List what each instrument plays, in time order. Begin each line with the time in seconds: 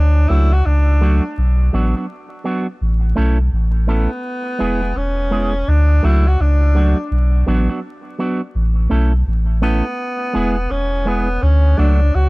Already playing: sub bass D2, tenor saxophone D4
0.29 sub bass C#2, clean electric guitar F#3 A3 D4 F#4, tenor saxophone E4
0.52 tenor saxophone F#4
0.66 sub bass C#2, tenor saxophone D4
1.01 clean electric guitar F#3 A3 D4 F#4
1.38 sub bass B1
1.73 sub bass A1, clean electric guitar F#3 B3 D4 F#4
1.96 clean electric guitar F#3 B3 D4 F#4
2.44 clean electric guitar F#3 B3 D4 F#4
2.81 sub bass A1
3.15 sub bass B1, clean electric guitar A3 C#4 E4 A4
3.53 sub bass A1
3.87 clean electric guitar A3 C#4 E4 A4, tenor saxophone B3
4.59 sub bass E1, clean electric guitar G#3 B3 E4 G#4
4.82 clean electric guitar G#3 B3 E4 G#4
4.96 sub bass E1, tenor saxophone C#4
5.31 clean electric guitar G#3 B3 E4 G#4
5.68 sub bass D2, tenor saxophone D4
6.03 sub bass C#2, clean electric guitar F#3 A3 D4 F#4, tenor saxophone E4
6.27 tenor saxophone F#4
6.40 sub bass C#2, tenor saxophone D4
6.75 clean electric guitar F#3 A3 D4 F#4
7.11 sub bass B1
7.46 sub bass A1, clean electric guitar F#3 B3 D4 F#4
7.69 clean electric guitar F#3 B3 D4 F#4
8.18 clean electric guitar F#3 B3 D4 F#4
8.55 sub bass A1
8.89 sub bass B1, clean electric guitar A3 C#4 E4 A4
9.27 sub bass A1
9.62 clean electric guitar A3 C#4 E4 A4, tenor saxophone B3
10.33 sub bass E1, clean electric guitar G#3 B3 E4 G#4
10.71 sub bass E1, tenor saxophone C#4
11.05 clean electric guitar G#3 B3 E4 G#4, tenor saxophone B3
11.42 sub bass D2, tenor saxophone C#4
11.77 sub bass C#2, clean electric guitar F#3 A3 D4 F#4, tenor saxophone D4
12.15 sub bass C#2, tenor saxophone F#4